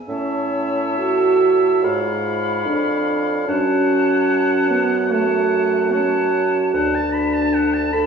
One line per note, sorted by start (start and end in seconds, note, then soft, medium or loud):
0.08 1.84 A2 medium
0.08 0.95 C#4 medium
0.08 1.80 C#5 medium
0.08 1.86 E5 medium
0.08 1.86 A5 medium
0.98 1.84 F#4 medium
1.83 2.67 G#2 medium
1.83 2.67 F4 medium
1.83 3.45 C#5 medium
1.83 3.48 F5 medium
1.83 3.47 B5 medium
2.65 3.47 F2 medium
2.65 3.49 D4 medium
3.48 6.69 F#2 medium
3.48 4.70 C#4 medium
3.48 5.07 C#5 medium
3.48 5.08 F#5 medium
3.48 4.87 A5 medium
4.70 5.13 B3 medium
5.09 5.93 A3 medium
5.09 5.89 C#5 medium
5.09 5.91 F#5 medium
5.09 5.90 A5 medium
5.90 6.47 C#4 medium
5.90 6.71 C#5 medium
5.90 6.56 F#5 medium
5.90 6.72 A5 medium
6.73 8.06 D2 medium
6.73 7.90 D4 medium
6.73 8.06 B4 medium
6.73 6.97 F#5 medium
6.73 8.06 A5 medium
6.95 7.15 A5 medium
7.13 7.35 B5 medium
7.34 7.55 A5 medium
7.54 7.75 F#5 medium
7.74 7.95 A5 medium
7.93 8.06 A4 medium
7.93 8.06 B5 soft